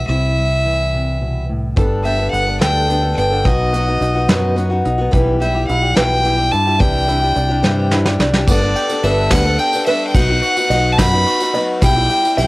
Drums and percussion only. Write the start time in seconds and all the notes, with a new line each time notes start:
1.77 kick, closed hi-hat
2.05 closed hi-hat
2.34 closed hi-hat
2.62 snare, closed hi-hat
2.90 closed hi-hat
3.18 closed hi-hat
3.45 kick, closed hi-hat
3.73 closed hi-hat
4.02 closed hi-hat
4.29 snare, closed hi-hat
4.58 closed hi-hat
4.85 closed hi-hat
5.13 kick, closed hi-hat
5.41 closed hi-hat
5.69 closed hi-hat
5.97 snare, closed hi-hat
6.25 closed hi-hat
6.53 closed hi-hat
6.80 kick, closed hi-hat
7.08 closed hi-hat
7.36 closed hi-hat
7.64 snare
7.91 snare
8.05 snare
8.20 snare
8.34 snare
8.48 kick, crash, tambourine
8.76 ride
8.89 tambourine
9.03 ride
9.31 kick, snare, ride, tambourine
9.59 ride
9.73 tambourine
9.86 ride
10.14 kick, ride, tambourine
10.43 ride
10.57 tambourine
10.70 ride
10.98 kick, snare, ride, tambourine
11.27 ride
11.40 tambourine
11.54 ride
11.81 kick, ride, tambourine
12.10 ride
12.25 tambourine
12.38 ride